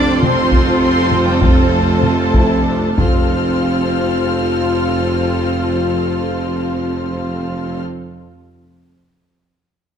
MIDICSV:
0, 0, Header, 1, 11, 480
1, 0, Start_track
1, 0, Key_signature, -1, "major"
1, 0, Tempo, 588235
1, 1150, Tempo, 621762
1, 1151, Time_signature, 3, 2, 24, 8
1, 2110, Tempo, 664452
1, 7402, End_track
2, 0, Start_track
2, 0, Title_t, "Violin section"
2, 0, Program_c, 0, 48
2, 0, Note_on_c, 0, 86, 100
2, 155, Note_off_c, 0, 86, 0
2, 185, Note_on_c, 0, 84, 94
2, 653, Note_off_c, 0, 84, 0
2, 663, Note_on_c, 0, 84, 98
2, 1020, Note_off_c, 0, 84, 0
2, 1027, Note_on_c, 0, 79, 74
2, 1148, Note_off_c, 0, 79, 0
2, 1157, Note_on_c, 0, 81, 76
2, 2343, Note_on_c, 0, 89, 74
2, 2347, Note_off_c, 0, 81, 0
2, 5836, Note_off_c, 0, 89, 0
2, 7402, End_track
3, 0, Start_track
3, 0, Title_t, "Trumpet"
3, 0, Program_c, 1, 56
3, 0, Note_on_c, 1, 74, 108
3, 151, Note_off_c, 1, 74, 0
3, 179, Note_on_c, 1, 72, 76
3, 650, Note_off_c, 1, 72, 0
3, 660, Note_on_c, 1, 72, 85
3, 1028, Note_on_c, 1, 67, 68
3, 1041, Note_off_c, 1, 72, 0
3, 1147, Note_off_c, 1, 67, 0
3, 1152, Note_on_c, 1, 69, 59
3, 2322, Note_off_c, 1, 69, 0
3, 2350, Note_on_c, 1, 65, 62
3, 5843, Note_off_c, 1, 65, 0
3, 7402, End_track
4, 0, Start_track
4, 0, Title_t, "Violin section"
4, 0, Program_c, 2, 48
4, 0, Note_on_c, 2, 69, 93
4, 0, Note_on_c, 2, 72, 90
4, 2314, Note_off_c, 2, 69, 0
4, 2314, Note_off_c, 2, 72, 0
4, 2345, Note_on_c, 2, 69, 65
4, 2347, Note_on_c, 2, 72, 62
4, 5839, Note_off_c, 2, 69, 0
4, 5840, Note_off_c, 2, 72, 0
4, 7402, End_track
5, 0, Start_track
5, 0, Title_t, "String section"
5, 0, Program_c, 3, 48
5, 0, Note_on_c, 3, 60, 100
5, 0, Note_on_c, 3, 65, 92
5, 0, Note_on_c, 3, 69, 88
5, 0, Note_on_c, 3, 72, 94
5, 2315, Note_off_c, 3, 72, 0
5, 2317, Note_off_c, 3, 60, 0
5, 2336, Note_off_c, 3, 65, 0
5, 2337, Note_off_c, 3, 69, 0
5, 2344, Note_on_c, 3, 65, 65
5, 2344, Note_on_c, 3, 72, 70
5, 2346, Note_on_c, 3, 69, 65
5, 2347, Note_on_c, 3, 60, 72
5, 5837, Note_off_c, 3, 65, 0
5, 5837, Note_off_c, 3, 72, 0
5, 5839, Note_off_c, 3, 69, 0
5, 5840, Note_off_c, 3, 60, 0
5, 7402, End_track
6, 0, Start_track
6, 0, Title_t, "Viola section"
6, 0, Program_c, 4, 48
6, 0, Note_on_c, 4, 60, 88
6, 0, Note_on_c, 4, 65, 89
6, 1545, Note_off_c, 4, 60, 0
6, 1578, Note_off_c, 4, 65, 0
6, 1627, Note_on_c, 4, 65, 73
6, 1850, Note_off_c, 4, 65, 0
6, 1868, Note_on_c, 4, 64, 72
6, 2112, Note_off_c, 4, 64, 0
6, 2112, Note_on_c, 4, 62, 66
6, 2345, Note_off_c, 4, 62, 0
6, 2350, Note_on_c, 4, 60, 62
6, 2350, Note_on_c, 4, 65, 64
6, 5843, Note_off_c, 4, 60, 0
6, 5843, Note_off_c, 4, 65, 0
6, 7402, End_track
7, 0, Start_track
7, 0, Title_t, "French horn section"
7, 0, Program_c, 5, 60
7, 0, Note_on_c, 5, 62, 115
7, 152, Note_off_c, 5, 62, 0
7, 185, Note_on_c, 5, 60, 80
7, 653, Note_off_c, 5, 60, 0
7, 671, Note_on_c, 5, 60, 82
7, 1024, Note_off_c, 5, 60, 0
7, 1032, Note_on_c, 5, 55, 68
7, 1153, Note_off_c, 5, 55, 0
7, 1153, Note_on_c, 5, 57, 62
7, 2323, Note_off_c, 5, 57, 0
7, 2343, Note_on_c, 5, 65, 66
7, 5836, Note_off_c, 5, 65, 0
7, 7402, End_track
8, 0, Start_track
8, 0, Title_t, "Cello section"
8, 0, Program_c, 6, 48
8, 0, Note_on_c, 6, 62, 105
8, 154, Note_off_c, 6, 62, 0
8, 191, Note_on_c, 6, 60, 83
8, 655, Note_off_c, 6, 60, 0
8, 665, Note_on_c, 6, 60, 82
8, 1021, Note_off_c, 6, 60, 0
8, 1029, Note_on_c, 6, 55, 61
8, 1149, Note_off_c, 6, 55, 0
8, 1154, Note_on_c, 6, 57, 57
8, 2346, Note_off_c, 6, 57, 0
8, 2346, Note_on_c, 6, 53, 61
8, 5839, Note_off_c, 6, 53, 0
8, 7402, End_track
9, 0, Start_track
9, 0, Title_t, "Double bass section"
9, 0, Program_c, 7, 48
9, 0, Note_on_c, 7, 41, 84
9, 2315, Note_off_c, 7, 41, 0
9, 2345, Note_on_c, 7, 41, 61
9, 5838, Note_off_c, 7, 41, 0
9, 7402, End_track
10, 0, Start_track
10, 0, Title_t, "Tuba"
10, 0, Program_c, 8, 58
10, 0, Note_on_c, 8, 29, 78
10, 2313, Note_off_c, 8, 29, 0
10, 2347, Note_on_c, 8, 29, 62
10, 5840, Note_off_c, 8, 29, 0
10, 7402, End_track
11, 0, Start_track
11, 0, Title_t, "Taiko and cinematic ensemble drums"
11, 184, Note_on_c, 9, 47, 66
11, 265, Note_off_c, 9, 47, 0
11, 423, Note_on_c, 9, 41, 77
11, 504, Note_off_c, 9, 41, 0
11, 910, Note_on_c, 9, 47, 50
11, 991, Note_off_c, 9, 47, 0
11, 1155, Note_on_c, 9, 41, 97
11, 1233, Note_off_c, 9, 41, 0
11, 1627, Note_on_c, 9, 47, 60
11, 1704, Note_off_c, 9, 47, 0
11, 1867, Note_on_c, 9, 41, 80
11, 1944, Note_off_c, 9, 41, 0
11, 2345, Note_on_c, 9, 41, 94
11, 2418, Note_off_c, 9, 41, 0
11, 7402, End_track
0, 0, End_of_file